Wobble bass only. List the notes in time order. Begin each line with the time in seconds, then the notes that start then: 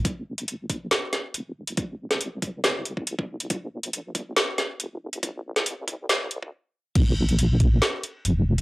0.05 A#1
1.34 F1
1.78 A#1
2.10 C2
3.50 A#1
4.80 F1
5.23 A#1
5.56 C2
6.42 D#2
6.96 A#1
8.25 F1